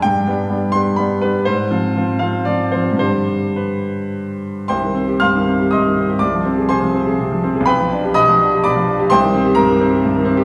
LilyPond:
<<
  \new Staff \with { instrumentName = "Grand piano" } { \time 3/4 \key c \minor \tempo 4 = 123 g''4. c'''8 b''8 b'8 | c''4. f''8 d''8 c''8 | c''4 b'4. r8 | <c'' g'' c'''>4 <f'' c''' f'''>4 <ees'' c''' ees'''>4 |
<d'' d'''>4 <c'' aes'' c'''>4. r8 | <b' g'' b''>4 <ees'' b'' ees'''>4 <d'' b'' d'''>4 | <c'' g'' c'''>4 <bes' bes''>4. r8 | }
  \new Staff \with { instrumentName = "Grand piano" } { \time 3/4 \key c \minor g,8 <g b d'>8 <g b d'>8 <g b d'>8 <g b d'>8 <g b d'>8 | aes,8 <f c' f'>8 <f c' f'>8 <f c' f'>8 <f c' f'>8 <f c' f'>8 | <g, d d' g'>2. | c,16 ees16 c'16 g'16 g,16 ees16 c'16 g'16 g,16 ees16 c'16 g'16 |
c,16 f16 c'16 aes'16 c16 f16 c'16 aes'16 c16 f16 c'16 aes'16 | b,,16 f16 d'16 g'16 b,16 f16 d'16 g'16 b,16 f16 d'16 g'16 | c,16 ees16 c'16 g'16 g,16 ees16 c'16 g'16 g,16 ees16 c'16 g'16 | }
>>